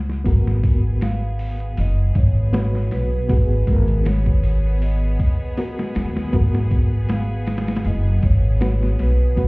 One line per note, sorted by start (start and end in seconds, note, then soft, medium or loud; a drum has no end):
0.00 0.23 C#2 medium
0.10 snare soft
0.24 1.74 G#1 loud
0.24 2.49 B3 medium
0.24 9.48 B3 medium
0.24 2.50 F#4 medium
0.24 9.48 G#4 medium
0.24 2.51 A#4 medium
0.24 kick loud
0.24 open hi-hat medium
0.47 snare soft
0.63 kick medium
0.63 open hi-hat medium
1.01 1.80 F5 loud
1.01 snare loud
1.01 open hi-hat medium
1.39 open hi-hat medium
1.60 closed hi-hat soft
1.77 2.12 F#1 medium
1.77 2.14 D#5 loud
1.77 open hi-hat medium
2.15 2.92 G#1 loud
2.15 2.95 C#5 loud
2.15 kick medium
2.15 open hi-hat medium
2.53 3.25 B3 medium
2.53 3.25 F#4 medium
2.53 3.26 B4 medium
2.53 snare loud
2.53 open hi-hat medium
2.75 snare soft
2.91 3.10 B1 loud
2.91 3.70 B4 medium
2.91 snare soft
2.91 open hi-hat medium
3.29 3.64 G#1 loud
3.29 5.53 B3 medium
3.29 5.54 F#4 medium
3.29 5.55 G#4 medium
3.29 kick loud
3.29 open hi-hat medium
3.67 5.16 G#1 loud
3.67 4.04 A#4 medium
3.67 kick medium
3.67 open hi-hat medium
3.88 closed hi-hat soft
4.05 4.84 C#5 medium
4.05 snare loud
4.05 open hi-hat medium
4.26 kick medium
4.43 open hi-hat medium
4.82 5.92 D#5 medium
4.82 open hi-hat medium
5.20 kick medium
5.20 open hi-hat medium
5.57 6.29 B3 medium
5.57 6.30 F#4 medium
5.57 6.30 A#4 medium
5.57 open hi-hat medium
5.79 snare medium
5.95 6.29 D#2 medium
5.95 snare loud
5.95 open hi-hat medium
6.17 snare medium
6.33 7.82 G#1 loud
6.33 8.57 B3 medium
6.33 8.58 F#4 medium
6.33 8.58 A#4 medium
6.33 kick loud
6.33 open hi-hat medium
6.55 snare soft
6.71 kick loud
6.71 open hi-hat medium
7.09 7.89 F5 medium
7.09 snare loud
7.09 open hi-hat medium
7.47 snare medium
7.47 open hi-hat medium
7.57 snare medium
7.57 open hi-hat medium
7.67 snare medium
7.67 open hi-hat medium
7.76 snare medium
7.76 open hi-hat medium
7.84 8.19 F#1 loud
7.84 8.25 D#5 medium
7.84 open hi-hat medium
8.22 8.99 G#1 medium
8.22 8.96 C#5 medium
8.22 kick medium
8.22 open hi-hat medium
8.61 9.33 B3 medium
8.61 9.33 F#4 medium
8.61 9.34 B4 loud
8.61 snare loud
8.61 open hi-hat medium
8.83 snare soft
8.99 9.18 B1 loud
8.99 9.48 B4 medium
8.99 snare soft
8.99 open hi-hat medium
9.36 9.48 G#1 loud
9.36 9.48 B3 medium
9.36 9.48 F#4 medium
9.36 9.48 B4 medium
9.36 kick loud
9.36 open hi-hat medium